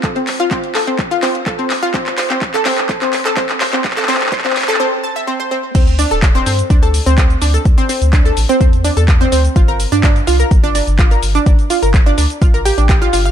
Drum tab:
CC |--------------------------------|--------------------------------|--------------------------------|x-------------------------------|
HH |x-x-o-x-x-x-o-x-x-x-o-x-x-x-o-x-|x-x-o-x-x-x-o-x-x-x-o-x-x-x-o-x-|x-x-o-x-x-x-o-x-----------------|x-x-o-x-x-x-o-x-x-x-o-x-x-x-o-x-|
SH |--------------------------------|--------------------------------|--------------------------------|x-x-x-x-x-x-x-x-x-x-x-x-x-x-x-x-|
CP |x---x---x---x---x---x---x---x---|x-x-x-x-x-x-x-x-x-x-x-x-x-x-x-x-|xxxxxxxxxxxxxxxx----------------|--------x---------------x-------|
BD |o-------o-------o-------o-------|o-------o-------o-------o-------|o-------o-----------------------|o-------o-------o-------o-------|

CC |--------------------------------|--------------------------------|--------------------------------|
HH |x-x-o-x-x-x-o-x-x-x-o-x-x-x-o-x-|x-x-o-x-x-x-o-x-x-x-o-x-x-x-o-x-|x-x-o-x-x-x-o-x-x-x-o-x-x-x-o-x-|
SH |x-x-x-x-x-x-x-x-x-x-x-x-x-x-x-x-|x-x-x-x-x-x-x-x-x-x-x-x-x-x-x-x-|x-x-x-x-x-x-x-x-x-x-x-x-x-x-x-x-|
CP |--------x---------------x-------|--------x---------------x-------|--------x---------------x-------|
BD |o-------o-------o-------o-------|o-------o-------o-------o-------|o-------o-------o-------o-------|